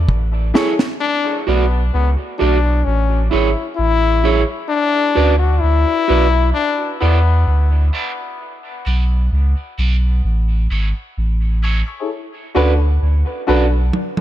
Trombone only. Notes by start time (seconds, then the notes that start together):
1.01 D4
1.47 B3
1.93 B3
2.38 D4
2.84 C#4
3.30 E4
3.76 E4
4.69 D4
5.39 F#4
5.60 E4
6.53 D4
7.00 B3